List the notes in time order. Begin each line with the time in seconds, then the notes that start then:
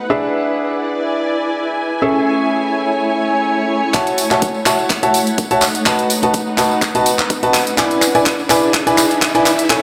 Already playing: A3 D#4 B4 F#5
0.10 D4 E4 G#4 B4 E5
0.68 D5
0.97 G#5
2.02 C#4 G#4 A4 E5
2.09 A3
2.20 C#5
3.94 F#4 C#5 E5 A5, kick, clap, closed hi-hat, tambourine, riser
4.07 closed hi-hat, tambourine
4.18 open hi-hat, tambourine
4.31 F#4 C#5 E5 A5, clap, closed hi-hat, tambourine
4.42 kick, closed hi-hat, tambourine
4.54 tambourine
4.65 F#4 C#5 E5 F#5 A5, clap, open hi-hat, tambourine
4.79 tambourine
4.90 kick, clap, closed hi-hat, tambourine
5.03 F#4 C#5 E5 A5, closed hi-hat, tambourine
5.14 open hi-hat, tambourine
5.27 closed hi-hat, tambourine
5.38 kick, closed hi-hat, tambourine
5.51 F#4 C#5 E5 A5, closed hi-hat, tambourine
5.61 D#4, clap, open hi-hat, tambourine
5.75 closed hi-hat, tambourine
5.86 F#4 B4 D#5 A5, kick, clap, closed hi-hat, tambourine
5.98 closed hi-hat, tambourine
6.10 open hi-hat, tambourine
6.23 F#4 B4 D#5 A5, closed hi-hat, tambourine
6.34 kick, closed hi-hat, tambourine
6.47 tambourine
6.58 F#4 B4 D#5 A5, clap, open hi-hat, tambourine
6.71 tambourine
6.82 kick, clap, closed hi-hat, tambourine
6.95 F#4 B4 D#5 A5, closed hi-hat, tambourine
7.06 open hi-hat, tambourine
7.19 clap, closed hi-hat, tambourine
7.30 kick, closed hi-hat, tambourine
7.43 F#4 B4 D#5 A5, closed hi-hat, tambourine
7.54 clap, open hi-hat, tambourine
7.67 closed hi-hat, tambourine
7.78 D4 E4 B4 D5 G#5, kick, clap, closed hi-hat, tambourine
7.91 closed hi-hat, tambourine
8.02 clap, open hi-hat, tambourine
8.14 E4 G#4 B4 D5 G#5, closed hi-hat, tambourine
8.26 kick, clap, closed hi-hat, tambourine
8.39 tambourine
8.50 E4 B4 D5 G#5, clap, open hi-hat, tambourine
8.63 E5, tambourine
8.74 kick, clap, closed hi-hat, tambourine
8.87 E4 B4 D5 G#5, closed hi-hat, tambourine
8.98 clap, open hi-hat, tambourine
9.11 closed hi-hat, tambourine
9.22 kick, clap, closed hi-hat, tambourine
9.34 E4 B4 D5 G#5, closed hi-hat, tambourine
9.46 clap, open hi-hat, tambourine
9.59 closed hi-hat, tambourine
9.70 C#4 E4 A4 C#5 G#5, kick, clap, closed hi-hat, tambourine